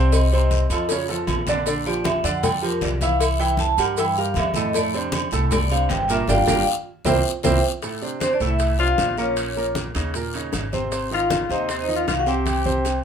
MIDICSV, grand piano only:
0, 0, Header, 1, 2, 480
1, 0, Start_track
1, 0, Key_signature, -1, "major"
1, 0, Tempo, 385604
1, 152, Time_signature, 4, 2, 24, 8
1, 16233, End_track
2, 0, Start_track
2, 0, Title_t, "Grand piano"
2, 0, Program_c, 0, 0
2, 0, Note_on_c, 0, 48, 96
2, 0, Note_on_c, 0, 60, 99
2, 0, Note_on_c, 0, 72, 95
2, 307, Note_off_c, 0, 48, 0
2, 309, Note_off_c, 0, 60, 0
2, 316, Note_off_c, 0, 72, 0
2, 405, Note_on_c, 0, 48, 94
2, 411, Note_on_c, 0, 60, 86
2, 411, Note_on_c, 0, 72, 78
2, 794, Note_off_c, 0, 48, 0
2, 797, Note_off_c, 0, 60, 0
2, 797, Note_off_c, 0, 72, 0
2, 894, Note_on_c, 0, 53, 77
2, 899, Note_on_c, 0, 65, 74
2, 901, Note_on_c, 0, 69, 79
2, 1082, Note_off_c, 0, 53, 0
2, 1085, Note_off_c, 0, 65, 0
2, 1086, Note_off_c, 0, 69, 0
2, 1133, Note_on_c, 0, 49, 85
2, 1136, Note_on_c, 0, 61, 81
2, 1142, Note_on_c, 0, 73, 81
2, 1321, Note_off_c, 0, 49, 0
2, 1323, Note_off_c, 0, 61, 0
2, 1327, Note_off_c, 0, 73, 0
2, 1359, Note_on_c, 0, 65, 70
2, 1360, Note_on_c, 0, 53, 69
2, 1365, Note_on_c, 0, 69, 78
2, 1750, Note_off_c, 0, 65, 0
2, 1751, Note_off_c, 0, 53, 0
2, 1754, Note_off_c, 0, 69, 0
2, 1850, Note_on_c, 0, 50, 86
2, 1855, Note_on_c, 0, 62, 89
2, 1856, Note_on_c, 0, 74, 99
2, 2039, Note_off_c, 0, 50, 0
2, 2042, Note_off_c, 0, 62, 0
2, 2043, Note_off_c, 0, 74, 0
2, 2081, Note_on_c, 0, 50, 83
2, 2083, Note_on_c, 0, 62, 77
2, 2088, Note_on_c, 0, 74, 86
2, 2274, Note_off_c, 0, 50, 0
2, 2275, Note_off_c, 0, 62, 0
2, 2278, Note_off_c, 0, 74, 0
2, 2319, Note_on_c, 0, 53, 73
2, 2321, Note_on_c, 0, 65, 70
2, 2331, Note_on_c, 0, 67, 81
2, 2710, Note_off_c, 0, 53, 0
2, 2711, Note_off_c, 0, 65, 0
2, 2717, Note_off_c, 0, 67, 0
2, 2787, Note_on_c, 0, 50, 80
2, 2793, Note_on_c, 0, 62, 88
2, 2793, Note_on_c, 0, 74, 89
2, 3183, Note_off_c, 0, 50, 0
2, 3186, Note_off_c, 0, 62, 0
2, 3186, Note_off_c, 0, 74, 0
2, 3262, Note_on_c, 0, 53, 70
2, 3268, Note_on_c, 0, 65, 74
2, 3268, Note_on_c, 0, 67, 75
2, 3659, Note_off_c, 0, 53, 0
2, 3663, Note_off_c, 0, 65, 0
2, 3663, Note_off_c, 0, 67, 0
2, 3760, Note_on_c, 0, 52, 86
2, 3766, Note_on_c, 0, 76, 94
2, 3768, Note_on_c, 0, 64, 96
2, 4150, Note_off_c, 0, 52, 0
2, 4154, Note_off_c, 0, 76, 0
2, 4155, Note_off_c, 0, 64, 0
2, 4224, Note_on_c, 0, 52, 92
2, 4237, Note_on_c, 0, 64, 95
2, 4238, Note_on_c, 0, 76, 91
2, 4620, Note_off_c, 0, 52, 0
2, 4628, Note_off_c, 0, 64, 0
2, 4629, Note_off_c, 0, 76, 0
2, 4719, Note_on_c, 0, 67, 80
2, 4723, Note_on_c, 0, 55, 82
2, 4729, Note_on_c, 0, 70, 77
2, 4912, Note_off_c, 0, 67, 0
2, 4914, Note_off_c, 0, 55, 0
2, 4918, Note_off_c, 0, 70, 0
2, 4959, Note_on_c, 0, 52, 89
2, 4968, Note_on_c, 0, 76, 85
2, 4970, Note_on_c, 0, 64, 90
2, 5152, Note_off_c, 0, 52, 0
2, 5157, Note_off_c, 0, 76, 0
2, 5159, Note_off_c, 0, 64, 0
2, 5203, Note_on_c, 0, 55, 73
2, 5204, Note_on_c, 0, 67, 68
2, 5206, Note_on_c, 0, 70, 66
2, 5590, Note_off_c, 0, 55, 0
2, 5591, Note_off_c, 0, 67, 0
2, 5592, Note_off_c, 0, 70, 0
2, 5677, Note_on_c, 0, 57, 86
2, 5678, Note_on_c, 0, 45, 104
2, 5679, Note_on_c, 0, 69, 90
2, 5870, Note_off_c, 0, 57, 0
2, 5871, Note_off_c, 0, 45, 0
2, 5871, Note_off_c, 0, 69, 0
2, 5921, Note_on_c, 0, 57, 91
2, 5924, Note_on_c, 0, 45, 82
2, 5925, Note_on_c, 0, 69, 80
2, 6112, Note_off_c, 0, 57, 0
2, 6114, Note_off_c, 0, 45, 0
2, 6115, Note_off_c, 0, 69, 0
2, 6150, Note_on_c, 0, 48, 72
2, 6156, Note_on_c, 0, 60, 83
2, 6168, Note_on_c, 0, 62, 77
2, 6542, Note_off_c, 0, 48, 0
2, 6546, Note_off_c, 0, 60, 0
2, 6553, Note_off_c, 0, 62, 0
2, 6626, Note_on_c, 0, 45, 91
2, 6633, Note_on_c, 0, 57, 90
2, 6638, Note_on_c, 0, 69, 85
2, 7020, Note_off_c, 0, 45, 0
2, 7024, Note_off_c, 0, 57, 0
2, 7027, Note_off_c, 0, 69, 0
2, 7111, Note_on_c, 0, 48, 72
2, 7117, Note_on_c, 0, 60, 72
2, 7119, Note_on_c, 0, 62, 72
2, 7502, Note_off_c, 0, 48, 0
2, 7505, Note_off_c, 0, 60, 0
2, 7507, Note_off_c, 0, 62, 0
2, 7590, Note_on_c, 0, 46, 97
2, 7594, Note_on_c, 0, 58, 96
2, 7599, Note_on_c, 0, 70, 95
2, 7785, Note_off_c, 0, 46, 0
2, 7787, Note_off_c, 0, 58, 0
2, 7790, Note_off_c, 0, 70, 0
2, 7827, Note_on_c, 0, 62, 99
2, 7828, Note_on_c, 0, 55, 94
2, 7832, Note_on_c, 0, 58, 93
2, 7979, Note_off_c, 0, 62, 0
2, 7980, Note_off_c, 0, 55, 0
2, 7982, Note_off_c, 0, 58, 0
2, 8058, Note_on_c, 0, 58, 104
2, 8059, Note_on_c, 0, 62, 103
2, 8061, Note_on_c, 0, 55, 99
2, 8214, Note_off_c, 0, 58, 0
2, 8215, Note_off_c, 0, 62, 0
2, 8216, Note_off_c, 0, 55, 0
2, 8775, Note_on_c, 0, 64, 99
2, 8776, Note_on_c, 0, 58, 102
2, 8780, Note_on_c, 0, 60, 107
2, 8932, Note_off_c, 0, 58, 0
2, 8932, Note_off_c, 0, 64, 0
2, 8935, Note_off_c, 0, 60, 0
2, 9265, Note_on_c, 0, 58, 106
2, 9269, Note_on_c, 0, 60, 109
2, 9271, Note_on_c, 0, 64, 106
2, 9418, Note_off_c, 0, 58, 0
2, 9420, Note_off_c, 0, 60, 0
2, 9421, Note_off_c, 0, 64, 0
2, 9752, Note_on_c, 0, 45, 71
2, 9757, Note_on_c, 0, 57, 70
2, 9760, Note_on_c, 0, 69, 67
2, 9945, Note_off_c, 0, 45, 0
2, 9949, Note_off_c, 0, 57, 0
2, 9950, Note_off_c, 0, 69, 0
2, 9983, Note_on_c, 0, 48, 73
2, 9988, Note_on_c, 0, 60, 64
2, 9991, Note_on_c, 0, 62, 63
2, 10377, Note_off_c, 0, 48, 0
2, 10380, Note_off_c, 0, 60, 0
2, 10382, Note_off_c, 0, 62, 0
2, 10466, Note_on_c, 0, 45, 83
2, 10473, Note_on_c, 0, 69, 76
2, 10474, Note_on_c, 0, 57, 86
2, 10859, Note_off_c, 0, 45, 0
2, 10863, Note_off_c, 0, 69, 0
2, 10864, Note_off_c, 0, 57, 0
2, 10940, Note_on_c, 0, 48, 68
2, 10942, Note_on_c, 0, 62, 60
2, 10946, Note_on_c, 0, 60, 67
2, 11336, Note_off_c, 0, 48, 0
2, 11338, Note_off_c, 0, 62, 0
2, 11340, Note_off_c, 0, 60, 0
2, 11429, Note_on_c, 0, 46, 78
2, 11430, Note_on_c, 0, 58, 88
2, 11431, Note_on_c, 0, 70, 83
2, 11822, Note_off_c, 0, 46, 0
2, 11823, Note_off_c, 0, 58, 0
2, 11823, Note_off_c, 0, 70, 0
2, 11907, Note_on_c, 0, 46, 70
2, 11913, Note_on_c, 0, 58, 75
2, 11916, Note_on_c, 0, 70, 77
2, 12301, Note_off_c, 0, 46, 0
2, 12305, Note_off_c, 0, 58, 0
2, 12306, Note_off_c, 0, 70, 0
2, 12389, Note_on_c, 0, 49, 71
2, 12392, Note_on_c, 0, 61, 70
2, 12397, Note_on_c, 0, 63, 77
2, 12585, Note_off_c, 0, 49, 0
2, 12587, Note_off_c, 0, 61, 0
2, 12590, Note_off_c, 0, 63, 0
2, 12639, Note_on_c, 0, 46, 70
2, 12649, Note_on_c, 0, 58, 75
2, 12652, Note_on_c, 0, 70, 76
2, 12832, Note_off_c, 0, 46, 0
2, 12838, Note_off_c, 0, 58, 0
2, 12839, Note_off_c, 0, 70, 0
2, 12881, Note_on_c, 0, 49, 64
2, 12882, Note_on_c, 0, 61, 67
2, 12888, Note_on_c, 0, 63, 68
2, 13270, Note_off_c, 0, 49, 0
2, 13271, Note_off_c, 0, 61, 0
2, 13274, Note_off_c, 0, 63, 0
2, 13356, Note_on_c, 0, 60, 78
2, 13361, Note_on_c, 0, 48, 81
2, 13362, Note_on_c, 0, 72, 82
2, 13551, Note_off_c, 0, 60, 0
2, 13553, Note_off_c, 0, 48, 0
2, 13554, Note_off_c, 0, 72, 0
2, 13594, Note_on_c, 0, 48, 71
2, 13598, Note_on_c, 0, 60, 68
2, 13599, Note_on_c, 0, 72, 77
2, 13789, Note_off_c, 0, 48, 0
2, 13792, Note_off_c, 0, 60, 0
2, 13793, Note_off_c, 0, 72, 0
2, 13832, Note_on_c, 0, 51, 69
2, 13844, Note_on_c, 0, 63, 72
2, 13847, Note_on_c, 0, 65, 67
2, 14226, Note_off_c, 0, 51, 0
2, 14232, Note_off_c, 0, 63, 0
2, 14234, Note_off_c, 0, 65, 0
2, 14318, Note_on_c, 0, 48, 78
2, 14326, Note_on_c, 0, 72, 80
2, 14328, Note_on_c, 0, 60, 80
2, 14709, Note_off_c, 0, 48, 0
2, 14714, Note_off_c, 0, 72, 0
2, 14715, Note_off_c, 0, 60, 0
2, 14792, Note_on_c, 0, 51, 61
2, 14794, Note_on_c, 0, 63, 68
2, 14799, Note_on_c, 0, 65, 63
2, 15186, Note_off_c, 0, 51, 0
2, 15187, Note_off_c, 0, 63, 0
2, 15190, Note_off_c, 0, 65, 0
2, 15267, Note_on_c, 0, 48, 85
2, 15269, Note_on_c, 0, 60, 88
2, 15272, Note_on_c, 0, 72, 80
2, 15663, Note_off_c, 0, 48, 0
2, 15665, Note_off_c, 0, 60, 0
2, 15666, Note_off_c, 0, 72, 0
2, 15754, Note_on_c, 0, 48, 75
2, 15757, Note_on_c, 0, 60, 75
2, 15760, Note_on_c, 0, 72, 86
2, 16148, Note_off_c, 0, 48, 0
2, 16150, Note_off_c, 0, 60, 0
2, 16152, Note_off_c, 0, 72, 0
2, 16233, End_track
0, 0, End_of_file